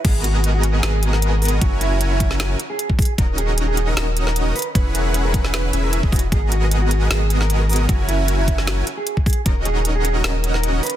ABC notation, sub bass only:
X:1
M:4/4
L:1/16
Q:"Swing 16ths" 1/4=153
K:G#m
V:1 name="Sub bass" clef=bass
G,,,8 G,,,8 | F,,,8- F,,,2 z6 | D,,,8 D,,,6 z2 | E,,,8- E,,,2 E,,,3 E,,,3 |
G,,,8 G,,,8 | F,,,8- F,,,2 z6 | D,,,8 D,,,6 z2 |]